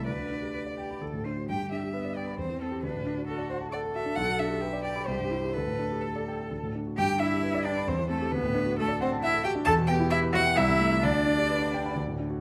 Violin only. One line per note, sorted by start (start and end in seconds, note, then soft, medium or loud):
0.07 1.00 D5 medium
1.49 1.70 G5 medium
1.72 2.18 E5 medium
2.16 2.39 D5 medium
2.39 2.61 C5 medium
2.62 2.83 A4 medium
2.83 3.26 B4 medium
3.27 3.49 A4 medium
3.50 3.58 C5 medium
3.72 3.80 D5 medium
3.95 4.17 E5 medium
4.16 4.41 F#5 loud
4.39 4.84 E5 medium
4.84 5.08 D5 medium
5.07 5.55 C5 medium
5.53 6.03 B4 medium
6.01 6.73 A4 medium
6.98 7.21 G5 loud
7.19 7.66 E5 loud
7.64 7.90 D5 medium
7.88 8.09 C5 medium
8.10 8.33 A4 medium
8.32 8.77 B4 loud
8.79 9.00 A4 loud
9.01 9.09 C5 loud
9.23 9.44 E5 loud
9.44 9.52 G5 loud
9.65 9.73 A5 loud
9.87 9.95 G5 loud
10.10 10.18 E5 loud
10.35 10.58 F#5 loud
10.57 11.05 E5 loud
11.03 11.97 D5 loud